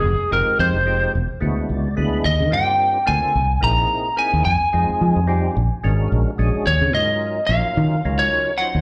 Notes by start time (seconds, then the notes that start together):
Already playing: G#4
0.04 F1
0.19 muted fingered electric bass stroke
0.31 F1 G#3 C4 D#4 F4 G4 A#4
0.46 muted fingered electric bass stroke
0.59 F2 C5
0.74 F1
0.86 G#3 C4 D#4 F4 G4
1.15 E1
1.40 D2 G#3 B3 D4 E4 F#4
1.69 C#2 D5
1.96 D2 G#3 B3 D4 E4 G#4 B5
2.25 D#2 D#5
2.40 D#3
2.51 G2 A#3 C4 D4 F4 G4 G5
3.06 D2 A#3 C4 D4 F4 A4 G#5
3.35 C2
3.61 A#1 A#3 C4 D#4 E4 G#4 A#5
4.16 A#3 C4 D#4 E4 G#4 G#5
4.33 D#2
4.45 F2 G#5
4.61 muted fingered electric bass stroke
4.73 F2 G#3 C4 D#4 F4 G#4
4.89 muted fingered electric bass stroke
5.01 F3
5.16 F2
5.28 G3 C4 D#4 F4 G4
5.57 A#1
5.84 G#1 G#3 C#4 D4 F#4 A#4
6.12 A#1
6.38 A#1 G#3 C#4 D4 F#4 G#4
6.54 muted fingered electric bass stroke
6.67 D#2 C#5
6.81 D#3
6.93 G#2 F#3 C#4 D#4 F4 A#4 D#5
7.47 A#1 F#3 C#4 D#4 F4 F5
7.51 A#4
7.77 D#3
8.05 C#2 F#3 C#4 D#4 F4 A#4
8.19 C#5
8.58 F#3 C#4 D#4 F4 C5 F#5
8.75 D#2